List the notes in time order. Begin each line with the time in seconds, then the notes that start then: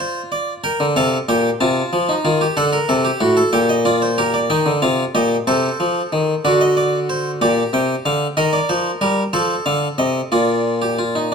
Already playing: F4
0.00 C5
0.32 D5
0.64 A#4 G5
0.80 D3
0.96 C3 A4 F5
1.29 A#2 G4 G5
1.61 C3 F4 A5
1.93 F3
2.09 D#4
2.25 D#3 F4
2.41 G4
2.57 D3 A4 F#5
2.73 A#4
2.89 C3 A4
3.05 G4
3.20 A2 F#4
3.37 A4
3.53 A#2 G4 G5
3.69 D#5
3.85 F4 D5
4.02 C5
4.18 G4 A#4
4.34 D5
4.50 D#3 D#4 G5
4.66 D3
4.82 C3 F4 F5
5.15 A#2 G4 D#5
5.47 C3 A4 C5
5.80 F3
6.13 D#3
6.45 D3 F#4 D5
6.61 D#5
6.77 D5
7.09 C5
7.41 A#2 G4 D5
7.73 C3 G5
8.05 D3 F5
8.37 D#3 A#4 D#5
8.53 D5
8.69 F3 C5
9.01 G3 A#4
9.33 F3 A4 C5
9.66 D3 F5
9.98 C3 D#5
10.32 A#2 F4 D5
10.82 G4
10.99 F4
11.15 D#4